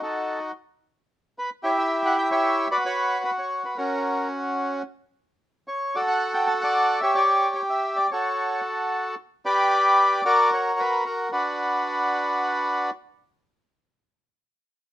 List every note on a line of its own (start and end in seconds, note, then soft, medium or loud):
0.03 0.52 D#4 medium
0.03 0.52 F#4 soft
0.03 0.39 A4 medium
1.39 1.50 B4 medium
1.63 2.66 E4 medium
1.63 2.30 G4 medium
1.63 1.70 C#5 medium
1.78 2.02 E5 medium
2.05 2.16 F#5 medium
2.18 2.30 G5 medium
2.31 2.68 G4 medium
2.31 2.68 C#5 medium
2.31 2.68 E5 medium
2.71 2.84 F#4 medium
2.71 3.23 B4 medium
2.71 2.77 D5 loud
2.85 3.74 F#4 medium
2.85 3.22 C#5 medium
3.25 3.30 B4 medium
3.38 3.63 C#5 medium
3.65 3.77 B4 medium
3.77 4.82 C#4 medium
3.77 4.82 F#4 medium
3.77 4.28 A#4 medium
5.68 5.95 C#5 medium
5.95 6.99 F#4 medium
5.95 6.62 A4 medium
5.95 6.01 D5 medium
6.08 6.33 F#5 medium
6.34 6.47 G5 medium
6.47 6.53 A5 medium
6.61 7.00 A4 medium
6.61 7.01 D5 medium
6.61 6.99 F#5 medium
7.01 7.16 G4 medium
7.01 7.54 C#5 medium
7.01 7.14 E5 medium
7.15 8.07 G4 medium
7.15 7.53 D5 medium
7.55 7.62 C#5 medium
7.70 7.97 E5 medium
7.96 8.10 D5 medium
8.11 9.15 F#4 medium
8.11 9.15 A4 medium
8.11 8.61 C#5 medium
9.46 10.21 G4 medium
9.46 10.21 B4 medium
9.46 10.24 D5 loud
10.25 11.28 F#4 medium
10.25 11.04 A#4 medium
10.25 10.50 D5 loud
10.53 10.80 C#5 medium
10.80 11.04 B4 medium
11.06 11.30 A#4 medium
11.32 12.90 D4 medium
11.32 12.90 F#4 medium
11.32 12.90 B4 medium